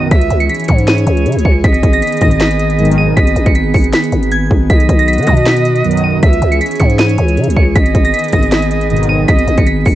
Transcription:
Already playing: impact
0.11 808-style bass C#2, analog synth pad E3 C#4 G#4, flute E5, synth bell B6, kick, closed hi-hat
0.21 closed hi-hat
0.30 808-style bass C#2, closed hi-hat
0.40 synth bell C#7, closed hi-hat
0.49 synth bell B6, closed hi-hat
0.55 closed hi-hat
0.60 closed hi-hat
0.64 closed hi-hat
0.68 808-style bass G#2, synth bell C#7, kick, closed hi-hat
0.78 closed hi-hat
0.87 flute C#5, synth bell D#7, snare, clap, closed hi-hat
0.98 closed hi-hat
1.07 808-style bass C#2, closed hi-hat
1.17 closed hi-hat
1.26 808-style bass C#3, closed hi-hat
1.32 808-style bass C#2, closed hi-hat
1.39 closed hi-hat
1.45 808-style bass C#2, synth bell C#7, kick
1.64 808-style bass G#1, analog synth pad D#3 B3, flute D#5, synth bell B6, kick, closed hi-hat
1.74 closed hi-hat
1.83 808-style bass G#1, kick, closed hi-hat
1.93 synth bell A#6, closed hi-hat
2.02 synth bell B6, closed hi-hat
2.07 closed hi-hat
2.12 closed hi-hat
2.17 closed hi-hat
2.21 808-style bass G#1, analog polysynth B1 G#2 D#3, synth bell A#6, kick, closed hi-hat
2.31 closed hi-hat
2.40 synth bell B6, snare, clap, closed hi-hat
2.51 closed hi-hat
2.59 closed hi-hat
2.70 closed hi-hat
2.79 analog polysynth B1 G#2 D#3, closed hi-hat
2.85 closed hi-hat
2.91 closed hi-hat
2.98 synth bell D#7
3.17 808-style bass G#1, flute D#5, synth bell B6, kick, closed hi-hat
3.27 closed hi-hat
3.36 808-style bass G#1, closed hi-hat
3.46 808-style bass G#1, synth bell C#7, kick, closed hi-hat
3.55 synth bell B6, closed hi-hat
3.74 808-style bass G#1, synth bell C#7, kick, open hi-hat
3.84 closed hi-hat
3.93 synth bell B6, snare, clap, closed hi-hat
4.04 closed hi-hat
4.12 808-style bass G#1, closed hi-hat
4.23 closed hi-hat
4.32 synth bell G#6, closed hi-hat
4.51 808-style bass G#1, kick
4.70 808-style bass B1, analog synth pad F#4, flute D#5, synth bell B6, kick, closed hi-hat
4.80 closed hi-hat
4.89 808-style bass B1, kick, closed hi-hat
4.99 synth bell A#6, closed hi-hat
5.08 synth bell B6, closed hi-hat
5.13 closed hi-hat
5.18 808-style bass D#3, closed hi-hat
5.23 closed hi-hat
5.27 analog polysynth B1 F#2 D#3, 808-style bass B2, synth bell A#6, kick, closed hi-hat
5.37 closed hi-hat
5.46 synth bell B6, snare, clap, closed hi-hat
5.57 closed hi-hat
5.65 closed hi-hat
5.76 closed hi-hat
5.85 analog polysynth B1 F#2 D#3, closed hi-hat
5.91 closed hi-hat
5.97 closed hi-hat
6.04 synth bell D#7
6.22 808-style bass C#2, analog synth pad E3 C#4 G#4, flute E5, synth bell B6, kick, closed hi-hat
6.33 closed hi-hat
6.42 808-style bass C#2, closed hi-hat
6.52 synth bell C#7, closed hi-hat
6.61 synth bell B6, closed hi-hat
6.66 closed hi-hat
6.71 closed hi-hat
6.76 closed hi-hat
6.80 808-style bass G#2, synth bell C#7, kick, closed hi-hat
6.90 closed hi-hat
6.99 flute C#5, synth bell D#7, snare, clap, closed hi-hat
7.09 closed hi-hat
7.18 808-style bass C#2, closed hi-hat
7.28 closed hi-hat
7.37 808-style bass C#3, closed hi-hat
7.44 808-style bass C#2, closed hi-hat
7.50 closed hi-hat
7.56 808-style bass C#2, synth bell C#7, kick
7.75 808-style bass G#1, analog synth pad D#3 B3 G#4, flute D#5, synth bell B6, kick, closed hi-hat
7.86 closed hi-hat
7.95 808-style bass G#1, kick, closed hi-hat
8.05 synth bell A#6, closed hi-hat
8.14 synth bell B6, closed hi-hat
8.19 closed hi-hat
8.24 closed hi-hat
8.28 closed hi-hat
8.32 808-style bass G#1, analog polysynth B1 G#2 D#3, synth bell A#6, kick, closed hi-hat
8.43 closed hi-hat
8.52 synth bell B6, snare, clap, closed hi-hat
8.62 closed hi-hat
8.71 closed hi-hat
8.81 closed hi-hat
8.90 analog polysynth B1 G#2 D#3, closed hi-hat
8.97 closed hi-hat
9.03 closed hi-hat
9.09 synth bell D#7
9.28 808-style bass G#1, flute D#5, synth bell B6, kick, closed hi-hat
9.39 closed hi-hat
9.48 808-style bass G#1, closed hi-hat
9.58 808-style bass G#1, synth bell C#7, kick, closed hi-hat
9.67 synth bell B6, closed hi-hat
9.85 808-style bass G#1, synth bell C#7, kick, open hi-hat

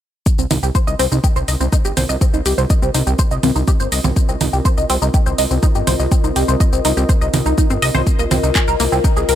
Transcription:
0.26 ambient pad C4, kick, shaker
0.39 analog synth bass C2, synth arpeggio sound C4, shaker
0.43 ambient pad A#4
0.50 analog synth bass C2, synth arpeggio sound D#4, ambient pad F4 D#5, open hi-hat, low conga, shaker
0.63 analog synth bass C2, synth arpeggio sound G4, shaker
0.75 synth arpeggio sound C5, kick, shaker
0.87 analog synth bass C2, synth arpeggio sound D#5, shaker
0.99 analog synth bass C2, synth arpeggio sound C4, open hi-hat, shaker
1.12 analog synth bass C2, synth arpeggio sound D#4, shaker
1.24 synth arpeggio sound G4, kick, shaker
1.36 analog synth bass C2, synth arpeggio sound C5, shaker
1.48 analog synth bass C2, synth arpeggio sound D#5, open hi-hat, shaker
1.60 analog synth bass C2, synth arpeggio sound C4, shaker
1.73 synth arpeggio sound D#4, kick, shaker
1.85 analog synth bass G1, synth arpeggio sound G4, shaker
1.97 analog synth bass C2, synth arpeggio sound C5, open hi-hat, low conga, shaker
2.09 analog synth bass C2, synth arpeggio sound D#5, shaker
2.21 synth arpeggio sound C4, kick, shaker
2.34 analog synth bass C2, synth arpeggio sound D#4, shaker
2.46 analog synth bass C2, synth arpeggio sound G4, open hi-hat, shaker
2.58 analog synth bass C2, synth arpeggio sound C5, shaker
2.70 synth arpeggio sound D#5, kick, shaker
2.82 analog synth bass C2, synth arpeggio sound C4, shaker
2.94 analog synth bass C2, synth arpeggio sound D#4, open hi-hat, shaker
3.07 analog synth bass C2, synth arpeggio sound G4, shaker
3.19 synth arpeggio sound C5, kick, shaker
3.31 analog synth bass C2, synth arpeggio sound D#5, shaker
3.43 analog synth bass C2, synth arpeggio sound C4, open hi-hat, low conga, shaker
3.56 analog synth bass C2, synth arpeggio sound D#4, shaker
3.68 synth arpeggio sound G4, kick, shaker
3.80 analog synth bass G1, synth arpeggio sound C5, shaker
3.92 analog synth bass C2, synth arpeggio sound D#5, open hi-hat, shaker
4.04 analog synth bass C2, synth arpeggio sound C4, low conga, shaker
4.16 kick, shaker
4.29 analog synth bass C2, synth arpeggio sound C4, shaker
4.41 analog synth bass C2, synth arpeggio sound D#4, open hi-hat, low conga, shaker
4.53 analog synth bass C2, synth arpeggio sound G4, shaker
4.65 synth arpeggio sound C5, kick, shaker
4.77 analog synth bass C2, synth arpeggio sound D#5, shaker
4.90 analog synth bass C2, synth arpeggio sound C4, open hi-hat, shaker
5.02 analog synth bass C2, synth arpeggio sound D#4, shaker
5.14 synth arpeggio sound G4, kick, shaker
5.26 analog synth bass C2, synth arpeggio sound C5, shaker
5.38 analog synth bass C2, synth arpeggio sound D#5, open hi-hat, shaker
5.51 analog synth bass C2, synth arpeggio sound C4, shaker
5.63 synth arpeggio sound D#4, kick, shaker
5.75 analog synth bass G1, synth arpeggio sound G4, shaker
5.87 analog synth bass C2, synth arpeggio sound C5, open hi-hat, low conga, shaker
6.00 analog synth bass C2, synth arpeggio sound D#5, shaker
6.12 synth arpeggio sound C4, kick, shaker
6.24 analog synth bass C2, synth arpeggio sound D#4, shaker
6.36 analog synth bass C2, synth arpeggio sound G4, open hi-hat, shaker
6.48 analog synth bass C2, synth arpeggio sound C5, shaker
6.60 synth arpeggio sound D#5, kick, shaker
6.73 analog synth bass C2, synth arpeggio sound C4, shaker
6.85 analog synth bass C2, synth arpeggio sound D#4, open hi-hat, shaker
6.97 analog synth bass C2, synth arpeggio sound G4, shaker
7.09 synth arpeggio sound C5, kick, shaker
7.21 analog synth bass C2, synth arpeggio sound D#5, shaker
7.34 analog synth bass C2, synth arpeggio sound D#4, open hi-hat, low conga, shaker
7.46 analog synth bass C2, synth arpeggio sound D#4, shaker
7.58 synth arpeggio sound D#4, kick, shaker
7.70 analog synth bass G1, synth arpeggio sound C4, shaker
7.82 analog synth bass C2, synth arpeggio sound D#5, open hi-hat, shaker
7.95 analog synth bass C2, synth arpeggio sound C5, low conga, shaker
8.07 kick, shaker
8.19 analog synth bass C2, synth arpeggio sound A#3, shaker
8.31 analog synth bass C2, synth arpeggio sound C4, open hi-hat, low conga, shaker
8.43 analog synth bass C2, synth arpeggio sound D#4, shaker
8.55 synth arpeggio sound G#4, kick, clap, shaker
8.68 analog synth bass C2, synth arpeggio sound A#4, shaker
8.80 analog synth bass C2, synth arpeggio sound A#3, open hi-hat, shaker
8.92 analog synth bass C2, synth arpeggio sound C4, shaker
9.04 synth arpeggio sound D#4, kick, shaker
9.17 analog synth bass C2, synth arpeggio sound G#4, shaker
9.29 analog synth bass C2, synth arpeggio sound A#4, open hi-hat, shaker

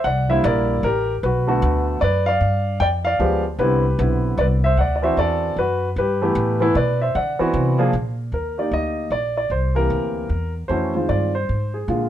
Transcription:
0.04 upright bass C2, grand piano D5 F#5
0.29 grand piano D3 G3 A#3 E4 C5 E5
0.44 upright bass A#1, grand piano A#4 D5
0.83 upright bass A1, grand piano G4 A#4
1.23 upright bass B1, grand piano F#4 B4
1.47 grand piano D3 A3 B3 F#4
1.62 upright bass D2
2.01 upright bass F#2, grand piano B4 D5
2.26 grand piano D5 F5
2.41 upright bass G2
2.80 upright bass F2, grand piano D5 G5
3.05 grand piano D5 F5
3.19 upright bass D2, grand piano F3 G#3 B3 G4
3.59 upright bass C2, grand piano D3 B3 C4 E4 G4 B4
3.99 upright bass B1, grand piano D3 B3 C4 E4
4.38 upright bass C2, grand piano B4 D5
4.64 grand piano C5 E5
4.77 upright bass D2, grand piano D5 F#5
4.96 grand piano D5
5.02 grand piano E3 C4 D4 F#4 C5 E5
5.17 upright bass E2, grand piano A4 D5
5.56 upright bass F#2, grand piano F#4 B4
5.96 upright bass G2, grand piano G4 B4
6.22 grand piano E3 A3 B3 G4
6.35 upright bass A2
6.60 grand piano E3 A3 B3 E4
6.75 upright bass B2, grand piano B4 D5
7.01 grand piano C5 E5
7.15 upright bass D3, grand piano D5 F#5
7.39 grand piano E3 B3 C4 F#4, muted upright bass stroke
7.54 upright bass C3
7.78 grand piano F3 A#3 D4 G#4
7.93 upright bass A#2
8.32 upright bass D#2, grand piano A#4
8.58 grand piano A#3 D#4 G4 D5
8.71 upright bass D2, grand piano D#5
9.10 upright bass A#1, grand piano D5
9.37 grand piano D5
9.50 upright bass C2, grand piano C5
9.75 grand piano E3 A#3 C4 G4 A#4
9.90 upright bass D2
10.29 upright bass E2
10.68 upright bass F2, grand piano E3 A3 C#4 F#4 C5
10.95 grand piano D#3 G#3 C4 F4
11.09 upright bass G2, grand piano D5
11.35 grand piano C5
11.49 upright bass G#2
11.74 grand piano G#4
11.88 upright bass A#2, grand piano D3 G#3 A#3 F4

